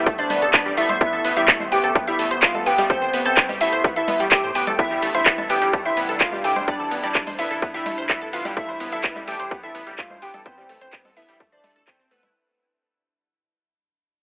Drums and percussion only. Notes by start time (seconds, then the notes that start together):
0.06 kick, closed hi-hat
0.18 closed hi-hat
0.30 open hi-hat, low conga
0.42 closed hi-hat
0.54 kick, clap, closed hi-hat
0.66 closed hi-hat
0.77 open hi-hat
0.89 closed hi-hat, low conga
1.01 kick, closed hi-hat
1.13 closed hi-hat
1.25 open hi-hat
1.37 closed hi-hat
1.48 kick, clap, closed hi-hat
1.60 closed hi-hat, low conga
1.72 open hi-hat
1.84 closed hi-hat
1.95 kick, closed hi-hat
2.07 closed hi-hat
2.19 open hi-hat
2.31 closed hi-hat
2.43 kick, clap, closed hi-hat
2.55 closed hi-hat, low conga
2.66 open hi-hat
2.78 closed hi-hat, low conga
2.90 kick, closed hi-hat
3.02 closed hi-hat
3.13 open hi-hat
3.25 closed hi-hat
3.37 kick, clap, closed hi-hat
3.49 open hi-hat, low conga
3.61 open hi-hat
3.73 closed hi-hat
3.84 kick, closed hi-hat
3.96 closed hi-hat
4.08 open hi-hat, low conga
4.20 closed hi-hat
4.31 kick, clap, closed hi-hat
4.43 closed hi-hat
4.55 open hi-hat
4.67 closed hi-hat, low conga
4.79 kick, closed hi-hat, ride
4.91 closed hi-hat
5.02 open hi-hat, ride
5.14 closed hi-hat
5.26 kick, clap, closed hi-hat, ride
5.38 closed hi-hat, low conga
5.50 open hi-hat, ride
5.62 closed hi-hat
5.73 kick, closed hi-hat, ride
5.85 closed hi-hat
5.97 open hi-hat, ride
6.09 closed hi-hat
6.20 kick, clap, closed hi-hat, ride
6.32 closed hi-hat, low conga
6.44 open hi-hat, ride
6.56 closed hi-hat, low conga
6.68 kick, closed hi-hat, ride
6.80 closed hi-hat
6.91 open hi-hat, ride
7.03 closed hi-hat
7.15 kick, clap, closed hi-hat, ride
7.27 open hi-hat, low conga
7.39 open hi-hat, ride
7.51 closed hi-hat
7.62 kick, closed hi-hat, ride
7.74 closed hi-hat
7.86 open hi-hat, ride, low conga
7.98 closed hi-hat
8.09 kick, clap, closed hi-hat, ride
8.21 closed hi-hat
8.33 open hi-hat, ride
8.45 closed hi-hat, low conga
8.57 kick, closed hi-hat, ride
8.69 closed hi-hat
8.80 open hi-hat, ride
8.92 closed hi-hat
9.04 kick, clap, closed hi-hat, ride
9.16 closed hi-hat, low conga
9.28 open hi-hat, ride
9.40 closed hi-hat
9.51 kick, closed hi-hat, ride
9.63 closed hi-hat
9.75 open hi-hat, ride
9.87 closed hi-hat
9.98 kick, clap, closed hi-hat, ride
10.10 closed hi-hat, low conga
10.22 open hi-hat, ride
10.34 closed hi-hat, low conga
10.46 kick, closed hi-hat, ride
10.58 closed hi-hat
10.69 open hi-hat, ride
10.81 closed hi-hat
10.93 kick, clap, closed hi-hat, ride
11.05 open hi-hat, low conga
11.17 open hi-hat, ride
11.29 closed hi-hat
11.40 kick, closed hi-hat, ride
11.52 closed hi-hat
11.64 open hi-hat, ride, low conga
11.76 closed hi-hat
11.87 kick, clap, closed hi-hat, ride
11.99 closed hi-hat
12.11 open hi-hat, ride
12.23 closed hi-hat, low conga